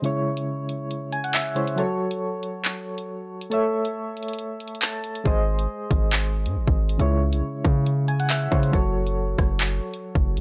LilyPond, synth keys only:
\new Staff \with { instrumentName = "Synth keys" } { \time 4/4 \key cis \minor \tempo 4 = 138 << { r2 r8 gis''16 fis''16 e''8 bis'8 | r1 | r2. a''4 | r1 |
r2 r8 gis''16 fis''16 e''8 bis'8 | r1 | } \\ { <cis gis e' cis''>2.~ <cis gis e' cis''>8 <cis gis e' cis''>8 | <fis fis' a' cis''>1 | <a a' cis'' e''>1 | <gis gis' bis' dis''>1 |
<cis gis e' cis''>2.~ <cis gis e' cis''>8 <cis gis e' cis''>8 | <fis fis' a' cis''>1 | } >> }